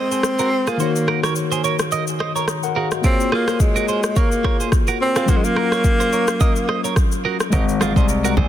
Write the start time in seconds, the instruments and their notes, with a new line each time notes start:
Already playing: tine electric piano G#3 G#4, tenor saxophone C4
0.11 clean electric guitar G#4 C5, shaker
0.23 cross-stick, shaker
0.39 clean electric guitar F#4 A#4, shaker
0.67 tenor saxophone A#3, clean electric guitar F4 G#4, cross-stick, shaker
0.77 tine electric piano D#3 D#4 F#4, clean electric guitar F#4 C5, shaker
0.82 tine electric piano C#5
0.96 shaker
1.08 clean electric guitar F#4 A#4, cross-stick
1.24 clean electric guitar A#4 C#5, cross-stick, shaker
1.36 shaker
1.52 clean electric guitar G#4 C5, shaker
1.64 clean electric guitar A#4 C#5, shaker
1.79 cross-stick, shaker
1.92 clean electric guitar A#4 D#5, shaker
2.07 shaker
2.20 clean electric guitar C5 D#5, cross-stick
2.35 clean electric guitar A#4 C#5, tine electric piano C#5 A#5, shaker
2.48 cross-stick, shaker
2.63 tine electric piano A#4 F#5, shaker
2.76 clean electric guitar F#4 A#4, tine electric piano G#4 F5
2.91 tine electric piano F#4 D#5, cross-stick, shaker
3.02 tine electric piano A#3 F4 G#4, tenor saxophone C4, clean electric guitar F4 A#4, kick, shaker
3.06 tine electric piano C#5
3.20 shaker
3.32 tenor saxophone A#3, clean electric guitar F4 G#4, cross-stick
3.48 clean electric guitar G#4 C5, cross-stick, shaker
3.60 tenor saxophone G#3, kick, shaker
3.76 clean electric guitar F#4 A#4, shaker
3.88 clean electric guitar G#4 C5, shaker
4.03 cross-stick, shaker
4.16 tenor saxophone A#3, clean electric guitar A#4 C#5, kick, shaker
4.32 shaker
4.43 tine electric piano A#3 F4 A#4, clean electric guitar A#4 C#5, kick, cross-stick
4.60 clean electric guitar G#4 C5, shaker
4.72 kick, cross-stick, shaker
4.87 clean electric guitar F#4 A#4, shaker
5.01 tenor saxophone C4
5.16 clean electric guitar F4 G#4, cross-stick, shaker
5.26 tine electric piano F#3 C#4 F4, tenor saxophone A#3, clean electric guitar F#4 C5, kick, shaker
5.31 tine electric piano A#4
5.37 tenor saxophone G#3
5.44 tenor saxophone A#3, shaker
5.56 clean electric guitar F#4 A#4, cross-stick
5.72 clean electric guitar A#4 C#5, cross-stick, shaker
5.84 kick, shaker
6.00 clean electric guitar G#4 C5, shaker
6.13 clean electric guitar A#4 C#5, shaker
6.28 cross-stick, shaker
6.40 clean electric guitar A#4 D#5, kick, shaker
6.56 shaker
6.69 clean electric guitar C5 D#5, cross-stick
6.84 clean electric guitar A#4 C#5, shaker
6.96 kick, cross-stick, shaker
7.12 shaker
7.25 clean electric guitar F#4 A#4
7.40 cross-stick, shaker
7.50 grand piano G#1, tine electric piano G#3 G#4 C5, clean electric guitar D#4 A#4, kick, low conga, shaker
7.55 tine electric piano D#5
7.69 shaker
7.81 clean electric guitar F4 G#4, cross-stick, high conga, shaker
7.96 grand piano C2, clean electric guitar G#4 C5, kick, shaker
8.09 shaker
8.24 clean electric guitar F#4 A#4, shaker
8.37 grand piano A#1, clean electric guitar G#4 C5, kick, high conga, low conga